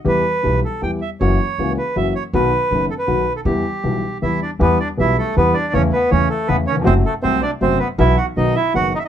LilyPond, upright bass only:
\new Staff \with { instrumentName = "Upright bass" } { \clef bass \time 3/4 \key e \minor \tempo 4 = 159 e,8 r8 b,,8 r8 e,8 r8 | fis,,8 r8 cis,8 r8 fis,,8 r8 | b,,8 r8 fis,,8 r8 b,,8 r8 | e,8 r8 b,,8 r8 e,8 r8 |
e,8 r8 b,,8 r8 e,8 r8 | e,8 r8 e,8 r8 e,8 r8 | fis,,8 r8 c,8 r8 fis,,8 r8 | b,,8 r8 b,,8 r8 fis,,8 r8 | }